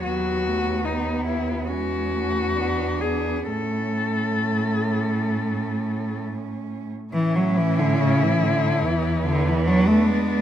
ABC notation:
X:1
M:4/4
L:1/16
Q:1/4=69
K:A
V:1 name="Cello"
F4 ^D2 E2 F6 G2 | A12 z4 | E12 D4 |]
V:2 name="Cello"
B,8 C4 D4 | C12- C3 z | C8 B,8 |]
V:3 name="Cello" clef=bass
F,2 A,2 B,4 G,2 A,2 B,2 B,2 | A,12- A,3 z | E, F, E, D, C, E, D,2 E,2 D, E, F, A, G,2 |]
V:4 name="Cello" clef=bass
^D,,8 E,,8 | A,,12- A,,3 z | A,,8 E,,8 |]